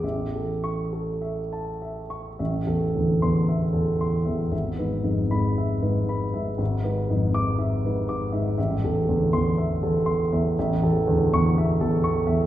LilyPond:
<<
  \new Staff \with { instrumentName = "Grand piano" } { \time 2/4 \key a \major \tempo 4 = 58 << { r8 cis'''8 r4 | \key e \phrygian r8. c'''8 r8. | r8. b''8 r8. | r8. d'''8 r8. |
r8. c'''8 r8. | \key a \major r8. cis'''8 r8. | } \\ { e''16 a'8 a'16 e''16 a''16 e''16 cis'''16 | e''16 a'16 e,8 e''16 a'16 c'''16 e''16 | e''16 b'16 gis,8 e''16 b'16 b''16 e''16 | e''16 b'16 gis,8 e''16 b'16 d'''16 e''16 |
e''16 a'16 e,8 e''16 a'16 c'''16 e''16 | e''16 a'16 e,8 e''16 a'16 cis'''16 e''16 | } >> }
  \new Staff \with { instrumentName = "Grand piano" } { \clef bass \time 2/4 \key a \major a,,2 | \key e \phrygian a,,16 e,16 d,16 e,8 e,8 e,16 | gis,,16 gis,16 f,16 gis,8 gis,8 gis,16 | gis,,16 gis,16 f,16 gis,8 gis,8 gis,16 |
a,,16 e,16 d,16 e,8 e,8 e,16 | \key a \major a,,16 e,16 d,16 e,8 e,8 e,16 | }
>>